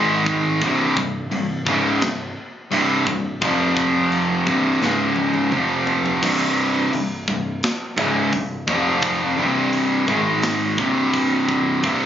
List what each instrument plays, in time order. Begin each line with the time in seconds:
Already playing: picked electric bass G#1, distorted electric guitar G#2 D#3 G#3
0.26 kick
0.61 picked electric bass C1, distorted electric guitar C2 G2 C3, kick, china
0.97 picked electric bass C1, distorted electric guitar C2 G2, kick
1.30 picked electric bass C1, distorted electric guitar C2 G2, china
1.65 picked electric bass C#1, distorted electric guitar C#2 G#2 C#3, kick
2.00 picked electric bass C1, distorted electric guitar C2 G2, snare, china
2.71 picked electric bass C1, distorted electric guitar C2 G2 C3, china
3.06 picked electric bass C1, distorted electric guitar C2 G2, kick
3.41 picked electric bass F1, distorted electric guitar F2 C3 F3, kick, china
3.77 kick
4.12 china
4.47 picked electric bass C1, distorted electric guitar C2 G2 C3, kick
4.81 picked electric bass C#1, distorted electric guitar C#2 G#2 C#3, snare
5.16 high tom
5.34 high tom
5.52 picked electric bass F1, distorted electric guitar F2 C3 F3, mid tom
5.87 floor tom
6.06 floor tom
6.23 picked electric bass C1, distorted electric guitar C2 G2 C3, kick, crash
6.93 picked electric bass C1, distorted electric guitar C2 G2, open hi-hat
7.28 picked electric bass C1, distorted electric guitar C2 G2, kick
7.63 snare, open hi-hat
7.98 picked electric bass C#1, distorted electric guitar C#2 G#2 C#3, kick
8.33 picked electric bass C1, distorted electric guitar C2 G2, kick, open hi-hat
8.68 picked electric bass F1, distorted electric guitar F2 C3 F3, kick
9.02 kick, open hi-hat
9.37 picked electric bass C1, distorted electric guitar C2 G2 C3
9.73 open hi-hat
10.08 picked electric bass G#1, distorted electric guitar G#2 D#3 G#3, kick
10.42 snare, open hi-hat
10.78 picked electric bass C1, distorted electric guitar C2 G2 C3, kick
11.14 kick, open hi-hat
11.49 kick
11.83 picked electric bass C1, distorted electric guitar C2 G2 C3, kick, open hi-hat